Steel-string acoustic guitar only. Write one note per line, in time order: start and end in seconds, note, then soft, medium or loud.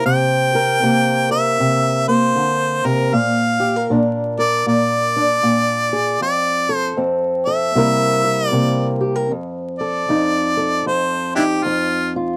0.00 0.83 A#3 medium
0.06 0.81 C3 medium
0.55 1.31 A#4 medium
0.82 1.59 C3 medium
0.82 2.07 A#3 medium
1.31 3.10 A#4 medium
1.60 2.36 C3 medium
2.08 3.91 A#3 medium
2.36 2.84 D3 medium
2.85 3.13 C3 medium
3.13 3.89 A#2 medium
3.60 3.76 G4 medium
3.76 4.37 A#4 medium
3.90 4.65 A#2 medium
3.90 5.15 D4 medium
4.39 6.19 A#4 medium
4.66 5.42 A#2 medium
5.16 6.19 D4 medium
5.43 6.18 A#2 medium
5.93 6.19 G#4 medium
6.21 6.96 F2 medium
6.69 7.46 A4 medium
6.97 7.76 F2 medium
6.97 7.72 C4 medium
7.47 7.73 A4 medium
7.75 8.51 C3 medium
7.75 9.28 G3 medium
7.75 8.53 A#3 medium
7.75 9.29 E4 medium
7.75 8.23 A#4 medium
8.24 9.00 A#4 medium
8.52 9.31 C3 medium
8.52 9.32 A#3 medium
9.01 9.16 G4 medium
9.16 9.31 A#4 medium
9.31 10.08 F2 medium
9.81 10.56 A4 medium
10.09 10.85 F2 medium
10.09 11.36 D#4 medium
10.57 12.37 A4 medium
10.86 11.64 F2 medium
11.38 12.37 D#4 medium
11.65 12.37 F2 medium
12.16 12.37 F4 medium